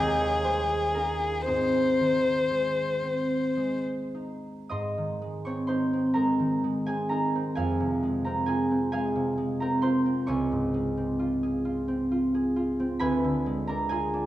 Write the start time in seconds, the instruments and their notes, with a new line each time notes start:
Already playing: harp D#2 D#4 G4 A#4 D#5 F5, violin G#4
0.21 harp C#5
0.44 harp G3 C5
0.69 harp G#4
0.94 harp C#4 F4 A#4
1.46 harp G#2 C4 D#4 G#4, violin C5
2.00 harp D#3
2.51 harp G#3
3.02 harp C4
3.57 harp G#3
4.15 harp D#4
4.69 harp G#2 D#5 C6 D#6
4.98 harp D#3
5.22 harp G#3
5.45 harp C4 C#5 C#6
5.67 harp D#4 C5 C6
5.93 harp C4
6.14 harp G#3 A#4 A#5
6.39 harp D#3
6.64 harp G#3
6.86 harp C4 G#4 G#5
7.09 harp D#4 A#4 A#5
7.35 harp C4
7.55 harp F2 G#4 F5 G#5
7.80 harp C3
8.03 harp G#3
8.25 harp C4 A#4 A#5
8.46 harp F4 G#4 G#5
8.71 harp C4
8.92 harp G#3 G#4 F5 G#5
9.16 harp C3
9.38 harp G#3
9.60 harp C4 A#4 A#5
9.82 harp F4 C5 C6
10.06 harp C4
10.27 harp C#2 C#5 G#5 C#6
10.52 harp G#2
10.74 harp G#3
10.97 harp C4
11.19 harp F4
11.43 harp G#4
11.65 harp F4
11.88 harp C4
12.12 harp F4
12.34 harp G#4
12.56 harp F4
12.80 harp C4
12.99 harp D2 B4 G#5 B5
13.24 harp D3
13.46 harp G#3
13.67 harp D4 A#4 A#5
13.89 harp F4 G#4 G#5
14.13 harp D4